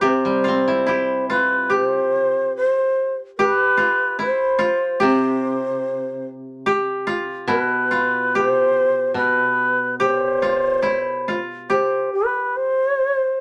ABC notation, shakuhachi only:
X:1
M:4/4
L:1/16
Q:1/4=72
K:none
V:1 name="Shakuhachi"
c6 B2 c4 c3 z | B4 c4 c6 z2 | z4 B4 c4 B4 | c6 z2 c2 B2 c4 |]